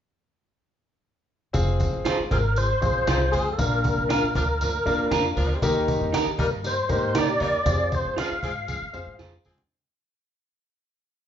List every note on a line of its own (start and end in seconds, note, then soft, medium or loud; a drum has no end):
1.53 1.85 F1 medium
1.53 2.05 C4 medium
1.53 2.06 F4 medium
1.53 2.05 G#4 medium
1.53 2.06 C5 medium
1.53 cajon bass loud
1.53 tambourine medium
1.53 muted conga soft
1.80 cajon bass medium
1.80 tambourine soft
1.93 2.03 G1 medium
2.05 2.17 F4 medium
2.05 2.17 G#4 medium
2.05 2.17 C5 medium
2.05 cajon slap loud
2.05 tambourine loud
2.05 high conga medium
2.19 muted upright bass stroke soft
2.31 2.72 G#1 medium
2.31 2.39 F3 medium
2.31 2.39 G#3 medium
2.31 2.39 C4 medium
2.31 2.39 G#4 loud
2.31 2.58 A#4 medium
2.31 cajon bass medium
2.31 tambourine soft
2.56 2.68 F3 medium
2.56 2.68 G#3 medium
2.56 2.68 C4 medium
2.56 2.68 G#4 medium
2.56 2.81 C5 medium
2.56 tambourine medium
2.56 muted conga soft
2.81 3.03 A#1 medium
2.81 3.20 C4 medium
2.81 3.20 F4 medium
2.81 3.21 G#4 medium
2.81 3.21 C5 medium
2.81 3.35 C5 loud
2.81 cajon bass medium
2.81 cajon slap soft
2.81 tambourine medium
2.81 muted conga soft
2.81 low conga medium
3.06 3.28 C2 medium
3.06 3.18 F3 medium
3.06 3.18 G#3 medium
3.06 3.18 C4 medium
3.06 3.19 F4 medium
3.06 3.18 G#4 medium
3.06 3.19 G#4 medium
3.06 3.20 C5 medium
3.06 cajon slap loud
3.06 tambourine medium
3.06 high conga medium
3.32 3.54 F2 medium
3.32 3.49 G#3 medium
3.32 3.49 C4 medium
3.32 3.49 F4 medium
3.32 3.52 G#4 medium
3.32 3.49 C5 medium
3.32 tambourine medium
3.32 high conga medium
3.53 3.59 A4 medium
3.58 3.89 A#1 medium
3.58 4.31 A#2 medium
3.58 4.10 A#3 medium
3.58 4.10 D4 medium
3.58 4.10 F4 medium
3.58 5.08 A#4 medium
3.58 4.10 A#4 medium
3.58 cajon bass medium
3.58 tambourine medium
3.58 muted conga medium
3.84 cajon bass medium
3.84 tambourine soft
3.98 4.08 C2 medium
4.09 4.21 D4 medium
4.09 4.21 F4 medium
4.09 4.22 A#4 medium
4.09 cajon slap loud
4.09 tambourine medium
4.09 high conga medium
4.23 muted upright bass stroke soft
4.35 4.76 D2 medium
4.35 4.44 F3 medium
4.35 4.43 A#3 loud
4.35 4.43 D4 medium
4.35 4.43 A#4 loud
4.35 cajon bass medium
4.35 tambourine medium
4.61 4.72 F3 medium
4.61 4.72 A#3 medium
4.61 4.72 D4 medium
4.61 4.72 A#4 medium
4.61 cajon bass medium
4.61 cajon slap soft
4.61 tambourine medium
4.61 muted conga soft
4.61 low conga medium
4.86 5.06 D#2 medium
4.86 5.25 A#3 medium
4.86 5.25 D4 medium
4.86 5.25 F4 medium
4.86 5.25 A#4 medium
4.86 cajon slap soft
4.86 tambourine medium
4.86 muted conga soft
5.11 5.32 F2 medium
5.11 5.23 F3 medium
5.11 5.22 A#3 medium
5.11 5.23 D4 medium
5.11 5.22 D4 medium
5.11 5.23 F4 medium
5.11 5.22 A#4 medium
5.11 5.24 A#4 medium
5.11 cajon slap loud
5.11 tambourine medium
5.11 high conga medium
5.36 5.57 D2 medium
5.36 5.58 F3 medium
5.36 5.58 A#3 medium
5.36 5.58 D4 medium
5.36 5.58 A#4 loud
5.36 cajon slap soft
5.36 tambourine medium
5.36 high conga medium
5.62 5.93 D#2 medium
5.62 6.35 D#3 medium
5.62 6.14 A#3 medium
5.62 6.14 D#4 medium
5.62 6.14 G4 medium
5.62 6.14 A#4 loud
5.62 cajon bass loud
5.62 tambourine medium
5.62 muted conga soft
5.88 cajon bass medium
5.88 tambourine soft
5.88 muted conga soft
6.00 6.11 F2 medium
6.13 6.24 D#4 medium
6.13 6.25 G4 medium
6.13 6.25 A#4 medium
6.13 cajon slap loud
6.13 tambourine loud
6.13 high conga medium
6.26 muted upright bass stroke soft
6.38 6.80 G2 medium
6.38 6.47 G3 medium
6.38 6.47 A#3 medium
6.38 6.47 D#4 medium
6.38 6.47 A#4 medium
6.38 6.51 A#4 medium
6.38 cajon bass medium
6.38 tambourine medium
6.63 6.75 G3 medium
6.63 6.75 A#3 medium
6.63 6.74 D#4 medium
6.63 6.75 A#4 medium
6.63 6.91 C5 medium
6.63 cajon slap soft
6.63 tambourine medium
6.63 muted conga soft
6.89 7.15 G#2 medium
6.89 7.28 A#3 medium
6.89 7.28 D#4 medium
6.89 7.28 G4 medium
6.89 7.28 A#4 medium
6.89 7.17 C5 medium
6.89 cajon bass medium
6.89 cajon slap soft
6.89 tambourine medium
6.89 muted conga soft
6.89 low conga medium
7.15 7.36 A#2 medium
7.15 7.26 G3 medium
7.15 7.26 A#3 medium
7.15 7.26 D#4 medium
7.15 7.27 G4 medium
7.15 7.26 A#4 medium
7.15 7.27 A#4 medium
7.15 7.41 D5 medium
7.15 cajon slap loud
7.15 tambourine medium
7.15 high conga medium
7.40 7.61 E2 medium
7.40 7.56 G3 medium
7.40 7.56 A#3 medium
7.40 7.56 D#4 medium
7.40 7.56 A#4 medium
7.40 7.94 D5 loud
7.40 cajon slap soft
7.40 tambourine medium
7.40 high conga medium
7.65 7.97 F2 loud
7.65 8.17 C4 medium
7.65 8.17 F4 medium
7.65 7.72 G4 medium
7.65 8.18 C5 medium
7.65 cajon bass loud
7.65 tambourine medium
7.65 muted conga soft
7.72 8.21 G#4 medium
7.92 8.19 C5 medium
7.92 cajon bass medium
7.92 tambourine soft
8.05 8.15 G2 medium
8.16 8.28 F4 medium
8.16 8.29 G#4 medium
8.16 8.29 C5 medium
8.16 9.17 F5 medium
8.16 cajon slap loud
8.16 tambourine loud
8.16 high conga medium
8.31 muted upright bass stroke soft
8.43 8.63 G#2 medium
8.43 8.51 F3 medium
8.43 8.51 G#3 medium
8.43 8.51 C4 medium
8.43 8.51 G#4 loud
8.43 cajon bass medium
8.43 tambourine medium
8.67 8.79 F3 medium
8.67 8.79 G#3 medium
8.67 8.79 C4 medium
8.67 8.79 G#4 medium
8.67 cajon bass medium
8.67 cajon slap soft
8.67 tambourine medium
8.67 muted conga soft
8.67 low conga medium
8.82 8.92 F3 medium
8.93 9.04 F2 medium
8.93 9.32 C4 medium
8.93 9.32 F4 medium
8.93 9.32 G#4 medium
8.93 9.33 C5 medium
8.93 tambourine medium
8.93 muted conga soft
9.07 9.17 G#2 medium
9.19 9.40 F2 medium
9.19 9.30 F3 medium
9.19 9.30 G#3 medium
9.19 9.30 C4 medium
9.19 9.30 F4 medium
9.19 9.30 G#4 medium
9.19 9.31 G#4 medium
9.19 9.31 C5 medium
9.19 tambourine medium
9.19 high conga medium
9.45 9.56 E2 medium
9.45 9.61 F3 medium
9.45 9.62 G#3 medium
9.45 9.61 C4 medium
9.45 9.62 G#4 medium
9.45 tambourine medium
9.45 high conga medium
9.58 cajon slap medium